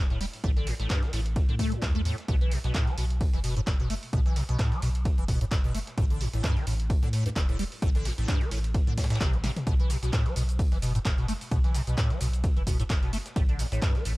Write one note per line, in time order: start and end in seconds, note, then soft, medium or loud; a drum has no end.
0.00 0.26 E1 medium
0.10 0.19 A2 medium
0.10 snare soft
0.10 closed hi-hat soft
0.21 0.25 G3 loud
0.21 open hi-hat loud
0.21 ride medium
0.33 open hi-hat medium
0.44 0.72 A1 loud
0.44 0.51 A2 loud
0.44 kick loud
0.44 closed hi-hat soft
0.44 ride medium
0.56 0.68 D3 medium
0.56 snare soft
0.56 closed hi-hat soft
0.67 0.74 A2 loud
0.67 snare medium
0.67 open hi-hat loud
0.67 ride medium
0.80 0.86 A1 medium
0.80 0.88 A2 medium
0.80 snare soft
0.80 closed hi-hat soft
0.90 1.04 G2 medium
0.90 kick loud
0.90 snare loud
0.90 clap loud
0.90 closed hi-hat soft
0.90 ride medium
1.03 1.11 E3 medium
1.03 snare medium
1.03 closed hi-hat soft
1.13 1.41 A1 loud
1.13 1.20 A2 medium
1.13 snare medium
1.13 open hi-hat loud
1.13 ride medium
1.26 closed hi-hat soft
1.26 ride soft
1.36 kick loud
1.36 closed hi-hat soft
1.36 ride medium
1.49 1.76 A2 medium
1.49 1.55 D3 medium
1.49 closed hi-hat soft
1.59 1.73 A3 loud
1.59 kick medium
1.59 open hi-hat loud
1.59 ride medium
1.72 1.84 A2 medium
1.72 closed hi-hat soft
1.82 2.10 E2 medium
1.82 1.86 A3 loud
1.82 kick loud
1.82 snare loud
1.82 clap loud
1.82 closed hi-hat soft
1.82 ride medium
1.95 2.01 A3 loud
1.95 snare soft
1.95 closed hi-hat soft
2.05 2.16 A2 loud
2.05 open hi-hat loud
2.05 ride medium
2.18 snare soft
2.18 closed hi-hat soft
2.28 2.56 B1 loud
2.28 2.35 B2 loud
2.28 kick loud
2.28 closed hi-hat soft
2.28 ride medium
2.41 2.53 E3 medium
2.41 closed hi-hat soft
2.51 2.58 B2 loud
2.51 open hi-hat loud
2.51 ride medium
2.64 2.71 B1 medium
2.64 2.73 B2 medium
2.64 snare medium
2.64 closed hi-hat soft
2.74 2.89 A2 loud
2.74 kick loud
2.74 snare loud
2.74 clap loud
2.74 closed hi-hat soft
2.74 ride medium
2.87 2.96 F#3 loud
2.87 snare soft
2.87 closed hi-hat soft
2.98 3.26 B1 loud
2.98 3.05 B2 medium
2.98 open hi-hat loud
2.98 ride medium
3.10 closed hi-hat soft
3.21 kick loud
3.21 closed hi-hat soft
3.21 open hi-hat medium
3.33 3.61 F#1 medium
3.33 3.39 E3 medium
3.33 snare soft
3.33 closed hi-hat soft
3.44 3.54 B2 medium
3.44 open hi-hat loud
3.44 ride medium
3.57 3.60 A2 medium
3.57 closed hi-hat soft
3.67 3.95 F#1 medium
3.67 3.71 A2 loud
3.67 kick loud
3.67 snare loud
3.67 clap loud
3.67 closed hi-hat soft
3.67 ride medium
3.80 3.88 B2 medium
3.80 snare soft
3.80 closed hi-hat soft
3.90 3.94 A3 loud
3.90 open hi-hat loud
3.90 ride medium
4.03 open hi-hat medium
4.13 4.41 B1 loud
4.13 4.20 B2 loud
4.13 kick loud
4.13 closed hi-hat soft
4.13 ride medium
4.26 4.38 E3 medium
4.26 snare soft
4.26 closed hi-hat soft
4.36 4.43 B2 loud
4.36 snare medium
4.36 open hi-hat loud
4.36 ride medium
4.49 4.55 B1 medium
4.49 4.57 B2 medium
4.49 snare soft
4.49 closed hi-hat soft
4.59 4.73 A2 loud
4.59 kick loud
4.59 snare loud
4.59 clap loud
4.59 closed hi-hat medium
4.59 ride medium
4.72 4.80 F#3 loud
4.72 snare soft
4.72 closed hi-hat soft
4.82 5.10 B1 loud
4.82 4.89 B2 medium
4.82 snare medium
4.82 open hi-hat loud
4.82 ride medium
4.95 closed hi-hat soft
4.95 ride soft
5.05 kick loud
5.05 closed hi-hat soft
5.05 ride medium
5.18 5.45 F#1 medium
5.18 5.24 E3 medium
5.18 closed hi-hat soft
5.28 5.39 B2 medium
5.28 kick medium
5.28 open hi-hat loud
5.28 ride medium
5.41 5.45 A2 loud
5.41 closed hi-hat soft
5.51 5.80 F#1 medium
5.51 5.56 A2 loud
5.51 kick loud
5.51 snare loud
5.51 clap loud
5.51 closed hi-hat medium
5.51 ride medium
5.64 5.73 B2 medium
5.64 snare soft
5.64 closed hi-hat soft
5.75 5.79 A3 loud
5.75 open hi-hat loud
5.75 ride medium
5.87 snare soft
5.87 closed hi-hat soft
5.98 6.26 A1 loud
5.98 6.05 A2 loud
5.98 kick loud
5.98 closed hi-hat soft
5.98 ride medium
6.10 6.22 D3 medium
6.10 closed hi-hat soft
6.21 6.28 A2 loud
6.21 open hi-hat loud
6.21 ride medium
6.33 6.40 A1 medium
6.33 6.42 A2 medium
6.33 snare medium
6.33 closed hi-hat soft
6.44 6.58 G2 loud
6.44 kick loud
6.44 snare loud
6.44 clap loud
6.44 closed hi-hat medium
6.44 ride medium
6.57 6.65 E3 loud
6.57 snare soft
6.57 closed hi-hat soft
6.67 6.95 A1 loud
6.67 6.74 A2 medium
6.67 open hi-hat loud
6.67 ride medium
6.80 closed hi-hat soft
6.90 kick loud
6.90 closed hi-hat soft
6.90 open hi-hat medium
7.03 7.30 A2 medium
7.03 7.08 D3 medium
7.03 snare soft
7.03 closed hi-hat soft
7.13 7.24 A2 medium
7.13 open hi-hat medium
7.13 ride medium
7.26 7.29 G2 loud
7.26 closed hi-hat medium
7.36 7.64 E1 medium
7.36 7.40 G2 loud
7.36 kick loud
7.36 snare loud
7.36 clap loud
7.36 closed hi-hat medium
7.36 ride medium
7.49 7.57 A2 medium
7.49 snare soft
7.49 closed hi-hat soft
7.59 7.63 G3 medium
7.59 open hi-hat loud
7.72 open hi-hat medium
7.82 8.10 A1 loud
7.82 7.89 A2 loud
7.82 kick loud
7.82 closed hi-hat medium
7.82 ride medium
7.95 8.07 D3 medium
7.95 snare soft
7.95 closed hi-hat soft
8.05 8.12 A2 loud
8.05 snare medium
8.05 open hi-hat loud
8.05 ride medium
8.18 8.24 A1 medium
8.18 8.27 A2 medium
8.18 snare soft
8.18 closed hi-hat medium
8.28 8.43 G2 loud
8.28 kick loud
8.28 snare loud
8.28 clap loud
8.28 closed hi-hat medium
8.28 ride medium
8.41 8.50 E3 loud
8.41 snare soft
8.41 closed hi-hat soft
8.51 8.80 A1 loud
8.51 8.58 A2 medium
8.51 snare medium
8.51 open hi-hat loud
8.51 ride medium
8.64 closed hi-hat soft
8.64 ride soft
8.74 kick loud
8.74 closed hi-hat medium
8.74 ride medium
8.87 9.14 A2 medium
8.87 8.93 D3 medium
8.87 closed hi-hat soft
8.98 9.05 A2 medium
8.98 kick medium
8.98 snare medium
8.98 open hi-hat loud
8.98 ride medium
9.04 snare medium
9.04 ride medium
9.10 9.19 A2 medium
9.10 snare medium
9.10 closed hi-hat medium
9.10 ride medium
9.15 snare medium
9.15 ride medium
9.21 9.49 A1 medium
9.21 9.35 C3 loud
9.21 kick loud
9.21 clap loud
9.21 closed hi-hat medium
9.21 ride medium
9.33 9.37 G3 loud
9.33 closed hi-hat soft
9.44 9.51 C3 loud
9.44 snare medium
9.44 open hi-hat medium
9.44 ride medium
9.56 snare soft
9.56 closed hi-hat medium
9.56 mid tom medium
9.67 9.95 B1 loud
9.67 9.74 B2 loud
9.67 kick loud
9.67 closed hi-hat medium
9.67 ride medium
9.67 cabasa soft
9.80 9.91 E3 medium
9.80 closed hi-hat soft
9.90 9.97 B2 loud
9.90 open hi-hat loud
9.90 ride medium
9.90 cabasa medium
10.03 10.09 B1 medium
10.03 10.11 B2 medium
10.03 snare medium
10.03 closed hi-hat medium
10.03 cabasa soft
10.13 10.27 A2 loud
10.13 kick loud
10.13 snare loud
10.13 clap loud
10.13 closed hi-hat medium
10.13 ride medium
10.13 cabasa soft
10.26 10.34 F#3 loud
10.26 snare soft
10.26 closed hi-hat soft
10.36 10.64 B1 loud
10.36 10.43 B2 medium
10.36 open hi-hat loud
10.36 ride medium
10.36 cabasa medium
10.49 closed hi-hat soft
10.49 cabasa soft
10.59 kick loud
10.59 closed hi-hat soft
10.59 open hi-hat medium
10.59 cabasa soft
10.72 10.99 F#1 medium
10.72 10.78 E3 medium
10.72 snare soft
10.72 closed hi-hat soft
10.82 10.93 B2 medium
10.82 open hi-hat loud
10.82 ride medium
10.82 cabasa medium
10.95 10.98 A2 loud
10.95 closed hi-hat medium
10.95 cabasa soft
11.05 11.33 F#1 medium
11.05 11.09 A2 loud
11.05 kick loud
11.05 snare loud
11.05 clap loud
11.05 closed hi-hat medium
11.05 ride medium
11.05 cabasa soft
11.18 11.27 B2 medium
11.18 snare soft
11.18 closed hi-hat soft
11.28 11.33 A3 loud
11.28 open hi-hat loud
11.28 ride medium
11.28 cabasa medium
11.41 open hi-hat medium
11.41 cabasa soft
11.51 11.80 B1 loud
11.51 11.58 B2 loud
11.51 kick loud
11.51 closed hi-hat soft
11.51 ride medium
11.51 cabasa soft
11.64 11.76 E3 medium
11.64 snare soft
11.64 closed hi-hat soft
11.74 11.82 B2 loud
11.74 snare medium
11.74 open hi-hat loud
11.74 ride medium
11.74 cabasa medium
11.87 11.94 B1 medium
11.87 11.96 B2 medium
11.87 snare soft
11.87 closed hi-hat medium
11.87 cabasa soft
11.98 12.12 A2 loud
11.98 kick loud
11.98 snare loud
11.98 clap loud
11.98 closed hi-hat medium
11.98 ride medium
11.98 cabasa soft
12.10 12.19 F#3 loud
12.10 snare soft
12.10 closed hi-hat soft
12.21 12.49 B1 loud
12.21 12.28 B2 medium
12.21 snare medium
12.21 open hi-hat loud
12.21 ride medium
12.21 cabasa medium
12.33 closed hi-hat soft
12.33 ride soft
12.33 cabasa soft
12.44 kick loud
12.44 closed hi-hat medium
12.44 ride medium
12.44 cabasa soft
12.56 12.84 F#1 medium
12.56 12.62 E3 medium
12.56 closed hi-hat soft
12.67 12.77 B2 medium
12.67 kick medium
12.67 open hi-hat loud
12.67 ride medium
12.67 cabasa medium
12.80 12.83 A2 medium
12.80 closed hi-hat medium
12.80 cabasa soft
12.90 13.18 F#1 medium
12.90 12.94 A2 loud
12.90 kick loud
12.90 snare loud
12.90 clap loud
12.90 closed hi-hat medium
12.90 ride medium
12.90 cabasa soft
13.03 13.11 B2 medium
13.03 snare soft
13.03 closed hi-hat soft
13.13 13.17 A3 loud
13.13 open hi-hat loud
13.13 ride medium
13.13 cabasa medium
13.26 snare soft
13.26 closed hi-hat soft
13.26 cabasa soft
13.36 13.64 A1 loud
13.36 13.43 A2 loud
13.36 kick loud
13.36 closed hi-hat soft
13.36 ride medium
13.36 cabasa soft
13.49 13.61 D3 medium
13.49 closed hi-hat soft
13.59 13.66 A2 loud
13.59 open hi-hat loud
13.59 ride medium
13.59 cabasa medium
13.72 13.78 A1 medium
13.72 13.80 A2 medium
13.72 snare medium
13.72 closed hi-hat soft
13.72 cabasa soft
13.82 13.96 G2 loud
13.82 kick loud
13.82 snare loud
13.82 clap loud
13.82 closed hi-hat soft
13.82 ride medium
13.82 cabasa soft
13.95 14.03 E3 loud
13.95 snare soft
13.95 closed hi-hat soft
14.05 14.17 A1 loud
14.05 14.12 A2 medium
14.05 open hi-hat loud
14.05 ride medium
14.05 cabasa medium